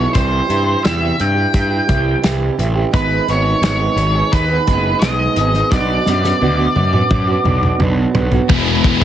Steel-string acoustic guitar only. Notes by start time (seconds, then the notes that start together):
Already playing: E2 B2 E4 G#4
0.00 E3 B3
0.14 C3 E3 G3 E4 G4
0.49 E3 G3 E4 G4
0.83 C3 E3 G3 E4 G4
1.01 G3 E4 G4
1.18 muted steel-string acoustic guitar stroke
1.35 G3 E4 G4
1.70 G3 E4 G4
1.86 E3 G3 E4 G4
2.22 C3 E3 G3 E4 G4
2.57 E3 G3 E4 G4
2.75 G3 E4 G4
2.91 G#2 D#3 G#3 B3 D#4 G#4
3.28 G#3 B3 D#4 G#4
3.62 G#2 D#3 G#3 B3 D#4 G#4
3.79 G#3 B3 D#4 G#4
3.99 muted steel-string acoustic guitar stroke
4.15 G#3 B3 D#4 G#4
4.49 G#3 B3 D#4 G#4
4.66 G#3 B3 D#4 G#4
5.02 G#2 D#3 G#3 B3 D#4 G#4
5.38 G#3 B3 D#4 G#4
5.55 G#3 B3 D#4 G#4
5.72 B2 F#3 B3 D4 F#4
6.06 F#3 B3 D4 F#4
6.41 B2 F#3 B3 D4 F#4
6.58 B3 D4 F#4
6.76 muted steel-string acoustic guitar stroke
6.93 B3 D4 F#4
7.27 B3 D4 F#4
7.45 F#3 B3 D4 F#4
7.79 B2 F#3 B3 D4 F#4
8.16 F#3 B3 D4 F#4
8.33 B3 D4 F#4